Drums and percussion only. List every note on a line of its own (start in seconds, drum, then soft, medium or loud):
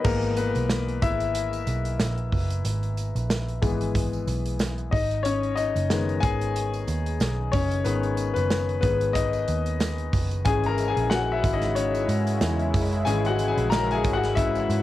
0.04 kick loud
0.04 crash loud
0.04 tambourine soft
0.23 closed hi-hat soft
0.36 closed hi-hat medium
0.36 tambourine soft
0.55 closed hi-hat medium
0.55 tambourine soft
0.69 snare loud
0.69 tambourine medium
0.88 closed hi-hat soft
1.02 kick loud
1.02 closed hi-hat medium
1.02 tambourine medium
1.20 closed hi-hat medium
1.20 tambourine soft
1.35 closed hi-hat loud
1.53 closed hi-hat soft
1.53 tambourine soft
1.67 closed hi-hat medium
1.67 tambourine medium
1.85 closed hi-hat medium
1.85 tambourine soft
2.00 snare loud
2.00 tambourine loud
2.18 closed hi-hat soft
2.32 kick loud
2.32 open hi-hat medium
2.32 tambourine medium
2.50 closed hi-hat medium
2.50 tambourine soft
2.65 closed hi-hat loud
2.65 tambourine soft
2.83 closed hi-hat soft
2.97 closed hi-hat medium
2.97 tambourine medium
3.16 closed hi-hat medium
3.16 tambourine soft
3.30 snare loud
3.30 tambourine medium
3.48 closed hi-hat soft
3.63 kick loud
3.63 closed hi-hat medium
3.63 tambourine medium
3.81 closed hi-hat soft
3.81 tambourine soft
3.95 kick medium
3.95 closed hi-hat medium
4.13 tambourine medium
4.27 closed hi-hat medium
4.27 tambourine medium
4.45 closed hi-hat medium
4.59 snare loud
4.59 tambourine loud
4.78 closed hi-hat soft
4.92 kick loud
4.92 open hi-hat medium
4.92 tambourine medium
5.10 closed hi-hat soft
5.10 tambourine soft
5.25 closed hi-hat loud
5.25 tambourine soft
5.43 closed hi-hat soft
5.57 closed hi-hat medium
5.57 tambourine medium
5.76 closed hi-hat medium
5.76 tambourine soft
5.90 snare loud
5.90 tambourine medium
6.09 closed hi-hat soft
6.23 kick loud
6.23 closed hi-hat medium
6.23 tambourine medium
6.41 closed hi-hat medium
6.56 closed hi-hat loud
6.73 closed hi-hat soft
6.73 tambourine medium
6.87 closed hi-hat medium
6.87 tambourine medium
7.06 closed hi-hat soft
7.20 snare loud
7.20 tambourine medium
7.53 kick loud
7.53 open hi-hat medium
7.53 tambourine medium
7.71 closed hi-hat medium
7.71 tambourine soft
7.85 closed hi-hat medium
7.85 tambourine soft
8.03 closed hi-hat soft
8.17 closed hi-hat medium
8.17 tambourine medium
8.36 closed hi-hat medium
8.36 tambourine soft
8.50 snare loud
8.50 tambourine medium
8.69 closed hi-hat soft
8.82 kick medium
8.82 closed hi-hat medium
8.82 tambourine medium
9.01 closed hi-hat soft
9.15 kick medium
9.15 closed hi-hat loud
9.33 closed hi-hat soft
9.33 tambourine soft
9.48 closed hi-hat medium
9.48 tambourine medium
9.66 closed hi-hat medium
9.80 snare loud
9.80 tambourine loud
9.99 closed hi-hat soft
10.13 kick medium
10.13 open hi-hat medium
10.13 tambourine medium
10.32 closed hi-hat medium
10.32 tambourine soft
10.46 kick loud
10.46 closed hi-hat loud
10.46 tambourine soft
10.64 closed hi-hat soft
10.78 closed hi-hat medium
10.78 tambourine medium
10.97 closed hi-hat medium
11.11 snare loud
11.11 tambourine medium
11.44 kick medium
11.44 closed hi-hat medium
11.44 tambourine medium
11.62 snare soft
11.62 closed hi-hat medium
11.62 tambourine soft
11.76 closed hi-hat loud
11.95 closed hi-hat soft
11.95 tambourine medium
12.09 closed hi-hat medium
12.09 tambourine medium
12.27 closed hi-hat medium
12.27 tambourine soft
12.41 snare loud
12.41 tambourine medium
12.59 closed hi-hat soft
12.74 kick medium
12.74 open hi-hat medium
12.74 tambourine medium
12.93 closed hi-hat soft
13.06 closed hi-hat medium
13.06 tambourine soft
13.25 closed hi-hat soft
13.39 closed hi-hat medium
13.39 tambourine soft
13.58 closed hi-hat medium
13.72 snare loud
13.72 tambourine medium
13.91 closed hi-hat soft
14.04 kick loud
14.04 closed hi-hat medium
14.04 tambourine medium
14.24 snare soft
14.24 closed hi-hat medium
14.37 kick medium
14.37 closed hi-hat loud
14.55 closed hi-hat soft
14.55 tambourine medium
14.70 closed hi-hat medium
14.70 tambourine medium